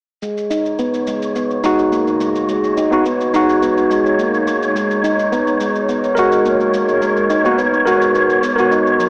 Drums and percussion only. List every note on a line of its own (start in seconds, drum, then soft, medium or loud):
0.22 shaker soft
0.37 shaker soft
0.51 shaker medium
0.66 shaker soft
0.79 shaker soft
0.94 shaker soft
1.07 shaker medium
1.22 shaker soft
1.36 shaker soft
1.51 shaker soft
1.64 shaker medium
1.79 shaker soft
1.92 shaker soft
2.07 shaker soft
2.21 shaker medium
2.36 shaker soft
2.49 shaker soft
2.64 shaker soft
2.77 shaker medium
2.92 shaker soft
3.06 shaker soft
3.21 shaker soft
3.34 shaker medium
3.49 shaker soft
3.63 shaker soft
3.77 shaker soft
3.91 shaker medium
4.06 shaker soft
4.19 shaker soft
4.34 shaker soft
4.47 shaker medium
4.63 shaker soft
4.76 shaker soft
4.91 shaker soft
5.04 shaker medium
5.19 shaker soft
5.33 shaker soft
5.47 shaker soft
5.61 shaker medium
5.75 shaker soft
5.89 shaker soft
6.04 shaker soft
6.17 shaker medium
6.32 shaker soft
6.46 shaker soft
6.60 shaker soft
6.74 shaker medium
6.89 shaker soft
7.02 shaker soft
7.17 shaker soft
7.30 shaker medium
7.45 shaker soft
7.58 shaker soft
7.73 shaker soft
7.87 shaker medium
8.02 shaker soft
8.15 shaker soft
8.30 shaker soft
8.43 shaker medium
8.58 shaker soft
8.72 shaker soft
8.87 shaker soft
9.00 shaker medium